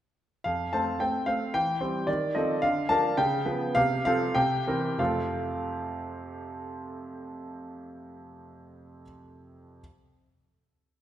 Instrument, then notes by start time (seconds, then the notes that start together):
grand piano
0.44 F2 F5
0.73 A3 C4 C5 A5
1.00 A3 C4 C5 G5
1.26 A3 C4 C5 F5
1.54 E3 G5
1.81 G3 C4 C5
2.07 D#3 D5
2.35 F3 C4 A4 D#5
2.62 D3 F5
2.89 F3 D4 A#4 A5
3.17 C#3 G5
3.46 F3 B3 B4
3.75 C3 F5
4.05 F3 C4 A4 F5
4.35 C3 G5
4.67 E3 C4 A#4
4.98 F2 C3 A3 C4 F4 A4 F5